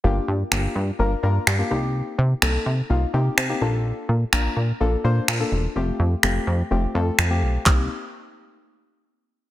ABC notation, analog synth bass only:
X:1
M:4/4
L:1/8
Q:1/4=126
K:Cdor
V:1 name="Analog synth bass" clef=bass
G,,, G,, G,,, G,, G,,, G,, G,, C,,- | C,, C, C,, C, C,, C, C, B,,,- | B,,, B,, B,,, B,, B,,, B,, B,, =E,,, | F,,, F,, F,,, F,, F,,, F,, F,, =B,,, |
C,, z6 z |]